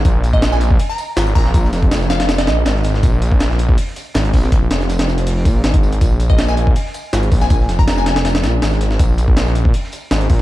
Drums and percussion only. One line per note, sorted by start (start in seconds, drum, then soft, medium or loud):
0.05 kick loud
0.05 closed hi-hat medium
0.05 tambourine medium
0.24 closed hi-hat medium
0.24 tambourine medium
0.33 kick medium
0.42 snare loud
0.42 closed hi-hat medium
0.42 tambourine medium
0.52 snare soft
0.60 closed hi-hat medium
0.60 tambourine medium
0.71 kick loud
0.79 closed hi-hat medium
0.79 open hi-hat medium
0.89 snare medium
0.98 closed hi-hat medium
0.98 tambourine medium
1.16 snare loud
1.16 closed hi-hat medium
1.16 tambourine medium
1.27 snare soft
1.27 closed hi-hat soft
1.35 kick loud
1.35 open hi-hat medium
1.35 tambourine medium
1.45 snare soft
1.54 kick loud
1.54 closed hi-hat medium
1.54 tambourine loud
1.65 snare medium
1.73 snare soft
1.73 closed hi-hat medium
1.73 tambourine medium
1.82 kick loud
1.82 closed hi-hat soft
1.91 snare loud
1.91 closed hi-hat medium
1.91 tambourine medium
2.01 snare soft
2.10 snare loud
2.10 closed hi-hat medium
2.10 tambourine medium
2.20 snare soft
2.20 snare loud
2.20 closed hi-hat medium
2.29 snare loud
2.29 closed hi-hat medium
2.29 tambourine loud
2.38 snare loud
2.38 closed hi-hat medium
2.47 snare loud
2.47 closed hi-hat medium
2.47 tambourine medium
2.65 snare loud
2.65 closed hi-hat medium
2.65 tambourine medium
2.76 snare soft
2.83 snare soft
2.83 closed hi-hat medium
2.83 tambourine medium
2.94 snare soft
3.03 kick loud
3.03 closed hi-hat medium
3.03 tambourine medium
3.22 closed hi-hat medium
3.22 tambourine medium
3.32 kick loud
3.40 snare loud
3.40 closed hi-hat medium
3.40 tambourine medium
3.50 snare soft
3.59 closed hi-hat medium
3.59 tambourine medium
3.69 kick loud
3.77 closed hi-hat medium
3.77 open hi-hat medium
3.87 snare soft
3.96 closed hi-hat medium
3.96 tambourine medium
4.14 snare loud
4.14 closed hi-hat medium
4.14 tambourine medium
4.24 snare soft
4.24 closed hi-hat soft
4.33 kick medium
4.33 open hi-hat medium
4.33 tambourine medium
4.43 snare medium
4.52 kick loud
4.52 closed hi-hat medium
4.52 tambourine medium
4.70 snare loud
4.70 closed hi-hat medium
4.70 tambourine medium
4.80 snare soft
4.80 closed hi-hat soft
4.89 snare loud
4.89 closed hi-hat medium
4.89 tambourine medium
4.99 snare loud
4.99 closed hi-hat medium
5.08 snare soft
5.08 tambourine medium
5.18 snare soft
5.18 closed hi-hat medium
5.27 closed hi-hat medium
5.27 open hi-hat medium
5.36 snare soft
5.45 kick loud
5.45 closed hi-hat medium
5.45 tambourine medium
5.64 snare loud
5.64 closed hi-hat medium
5.64 tambourine medium
5.74 kick loud
5.74 closed hi-hat medium
5.83 tambourine medium
5.92 closed hi-hat medium
6.01 kick loud
6.01 closed hi-hat medium
6.01 tambourine medium
6.20 closed hi-hat medium
6.20 tambourine medium
6.30 kick loud
6.38 snare loud
6.38 closed hi-hat medium
6.38 tambourine medium
6.48 snare soft
6.57 closed hi-hat medium
6.57 tambourine medium
6.67 kick medium
6.75 closed hi-hat medium
6.75 open hi-hat medium
6.86 snare soft
6.94 closed hi-hat medium
6.94 tambourine medium
7.13 snare loud
7.13 closed hi-hat medium
7.13 tambourine medium
7.22 snare soft
7.22 closed hi-hat soft
7.32 kick loud
7.32 open hi-hat medium
7.32 tambourine medium
7.41 snare soft
7.50 kick loud
7.50 closed hi-hat medium
7.50 tambourine medium
7.60 snare medium
7.69 snare soft
7.69 closed hi-hat medium
7.69 tambourine medium
7.79 kick loud
7.79 closed hi-hat soft
7.88 snare loud
7.88 closed hi-hat medium
7.88 tambourine medium
7.98 snare soft
8.06 snare loud
8.06 closed hi-hat medium
8.06 tambourine medium
8.16 snare soft
8.16 snare loud
8.16 closed hi-hat medium
8.25 snare loud
8.25 closed hi-hat medium
8.25 tambourine medium
8.35 snare loud
8.35 closed hi-hat medium
8.43 snare loud
8.43 closed hi-hat medium
8.43 tambourine medium
8.62 snare loud
8.62 closed hi-hat medium
8.62 tambourine medium
8.72 snare soft
8.81 snare soft
8.81 closed hi-hat medium
8.81 tambourine medium
8.91 snare soft
8.99 kick loud
8.99 closed hi-hat medium
8.99 tambourine medium
9.18 closed hi-hat medium
9.18 tambourine medium
9.28 kick loud
9.37 snare loud
9.37 closed hi-hat medium
9.37 tambourine medium
9.47 snare soft
9.55 closed hi-hat medium
9.55 tambourine medium
9.65 kick loud
9.74 closed hi-hat medium
9.74 open hi-hat medium
9.84 snare soft
9.92 closed hi-hat medium
9.92 tambourine medium
10.11 snare loud
10.11 closed hi-hat medium
10.11 tambourine medium
10.21 snare soft
10.21 closed hi-hat soft
10.29 kick loud
10.29 open hi-hat medium
10.29 tambourine medium